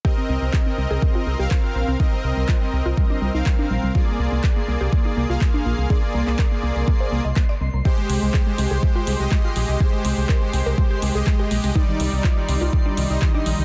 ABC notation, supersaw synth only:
X:1
M:4/4
L:1/16
Q:1/4=123
K:Cm
V:1 name="Supersaw synth"
[CBe]8- [CBe]3 [CBf]4- [CBf] | [CBe]8- [CBe]3 [CBf]4- [CBf] | [B,Ad]8- [B,Ad]3 [B,Af]4- [B,Af] | [B,Ad]8- [B,Ad]3 z4 z |
[A,Gc]8- [A,Gc]3 [A,Ge]4- [A,Ge] | [A,Gc]8- [A,Gc]3 [A,Ge]4- [A,Ge] | [G,Ed]8- [G,Ed]3 [G,Ee]4- [G,Ee] |]